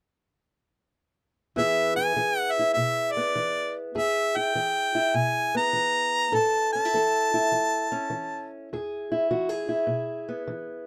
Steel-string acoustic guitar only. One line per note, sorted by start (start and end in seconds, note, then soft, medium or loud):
1.56 2.12 E2 medium
1.56 2.16 E3 medium
1.56 3.15 B3 medium
1.56 1.96 E4 medium
1.56 2.16 G#4 medium
1.97 2.59 E4 medium
2.16 2.72 E3 medium
2.16 3.92 G#4 medium
2.59 4.36 E4 medium
2.77 3.32 B2 medium
3.17 3.93 B3 medium
3.36 3.91 E3 medium
3.95 4.51 E2 medium
3.95 4.55 G#4 medium
4.36 4.94 E4 medium
4.55 5.10 E3 medium
4.55 6.31 G#4 medium
4.95 6.75 E4 medium
5.14 5.70 B2 medium
5.55 6.31 B3 medium
5.73 6.29 E3 medium
6.32 6.88 A2 medium
6.32 6.92 A4 medium
6.75 6.85 C#4 medium
6.85 7.33 E4 soft
6.94 7.49 E3 medium
6.94 8.69 A4 medium
7.34 9.11 E4 medium
7.52 8.07 E3 medium
7.92 8.68 C#4 medium
8.10 8.66 E3 medium
8.73 9.27 E2 medium
8.73 9.30 G#4 medium
9.12 9.68 E4 medium
9.31 9.86 E3 medium
9.31 9.49 F#4 medium
9.49 10.87 G#4 soft
9.69 10.87 E4 medium
9.87 10.43 B2 medium
10.29 10.87 B3 medium
10.47 10.87 E3 medium